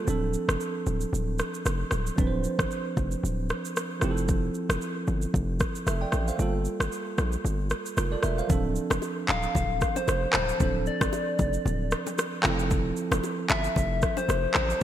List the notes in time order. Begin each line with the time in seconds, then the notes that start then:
0.05 D1 F3 C4 D4, shaker
0.10 A4
0.34 shaker
0.48 F1, cross-stick, shaker
0.61 shaker
0.86 D1, shaker
1.01 shaker
1.13 D1, shaker
1.39 cross-stick, shaker
1.54 shaker
1.66 F1, cross-stick, shaker
1.91 D1, cross-stick, shaker
2.07 shaker
2.16 D1 F3 C4 D4, kick, shaker
2.21 B4
2.27 C5
2.44 shaker
2.59 G1, kick, cross-stick, shaker
2.71 shaker
2.97 F1, kick, shaker
3.11 shaker
3.24 D1, shaker
3.49 cross-stick, shaker
3.65 shaker
3.76 cross-stick, shaker
4.00 F1 F3 C4 E4, cross-stick, shaker
4.05 G4
4.11 A4
4.17 shaker
4.28 kick, shaker
4.54 shaker
4.69 F1, cross-stick, shaker
4.81 shaker
5.07 G1, shaker
5.22 shaker
5.34 F1, kick, shaker
5.60 kick, cross-stick, shaker
5.75 shaker
5.87 F1 A4 E5, cross-stick, shaker
6.01 D5 G5
6.12 A1, cross-stick, shaker
6.28 C5 F5, shaker
6.37 G1 G3 A#3 F4, shaker
6.42 A4
6.65 shaker
6.80 G1, cross-stick, shaker
6.92 shaker
7.18 A#1, cross-stick, shaker
7.32 shaker
7.45 G1, shaker
7.70 cross-stick, shaker
7.86 shaker
7.97 F1 F4 A#4, cross-stick, shaker
8.12 A4 D5
8.23 E1 A#4 E5, cross-stick, shaker
8.38 C5 F5, shaker
8.47 D1 F3 C4 D4, kick, low conga, shaker
8.52 A4
8.76 shaker
8.90 F1, cross-stick, low bongo, shaker
9.02 high bongo, shaker
9.28 D1 F5, clap, low bongo, shaker
9.43 shaker
9.55 D1, kick, low conga, shaker
9.81 kick, cross-stick, shaker
9.96 C5, low bongo, shaker
10.08 F1, cross-stick, high bongo, shaker
10.33 D1 C5, cross-stick, clap, low conga, shaker
10.49 shaker
10.58 D1 F3 C4 D4, kick, low conga, shaker
10.63 A4
10.86 D5, shaker
11.01 G1, kick, cross-stick, low bongo, shaker
11.13 high bongo, shaker
11.39 F1, kick, low bongo, shaker
11.53 shaker
11.66 D1, low conga, shaker
11.91 cross-stick, shaker
12.07 low bongo, shaker
12.18 cross-stick, high bongo, shaker
12.42 F1 F3 C4 E4, cross-stick, clap, low conga, shaker
12.47 A4
12.59 shaker
12.71 kick, low conga, shaker
12.97 shaker
13.12 F1, cross-stick, low bongo, shaker
13.24 high bongo, shaker
13.50 G1 E5, clap, low bongo, shaker
13.64 shaker
13.76 F1, kick, low conga, shaker
14.02 kick, cross-stick, shaker
14.17 C5, low bongo, shaker
14.29 F1, cross-stick, high bongo, shaker
14.54 A1 C5, cross-stick, clap, low conga, shaker
14.70 shaker
14.79 G3